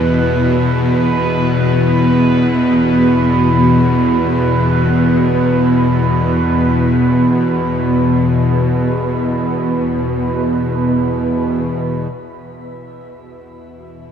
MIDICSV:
0, 0, Header, 1, 4, 480
1, 0, Start_track
1, 0, Tempo, 500000
1, 13554, End_track
2, 0, Start_track
2, 0, Title_t, "Synth texture"
2, 0, Program_c, 0, 99
2, 0, Note_on_c, 0, 71, 76
2, 11646, Note_on_c, 0, 76, 69
2, 11655, Note_off_c, 0, 71, 0
2, 13554, Note_off_c, 0, 76, 0
2, 13554, End_track
3, 0, Start_track
3, 0, Title_t, "Cello section"
3, 0, Program_c, 1, 48
3, 0, Note_on_c, 1, 47, 62
3, 0, Note_on_c, 1, 52, 54
3, 0, Note_on_c, 1, 59, 54
3, 0, Note_on_c, 1, 64, 55
3, 11613, Note_off_c, 1, 47, 0
3, 11625, Note_on_c, 1, 47, 62
3, 11630, Note_off_c, 1, 59, 0
3, 11631, Note_off_c, 1, 64, 0
3, 11640, Note_off_c, 1, 52, 0
3, 11823, Note_on_c, 1, 52, 61
3, 12130, Note_on_c, 1, 64, 49
3, 13554, Note_off_c, 1, 47, 0
3, 13554, Note_off_c, 1, 52, 0
3, 13554, Note_off_c, 1, 64, 0
3, 13554, End_track
4, 0, Start_track
4, 0, Title_t, "Synth drone"
4, 0, Program_c, 2, 95
4, 0, Note_on_c, 2, 40, 78
4, 0, Note_on_c, 2, 47, 74
4, 11634, Note_off_c, 2, 40, 0
4, 11643, Note_off_c, 2, 47, 0
4, 11645, Note_on_c, 2, 40, 63
4, 11655, Note_on_c, 2, 47, 69
4, 13554, Note_off_c, 2, 40, 0
4, 13554, Note_off_c, 2, 47, 0
4, 13554, End_track
0, 0, End_of_file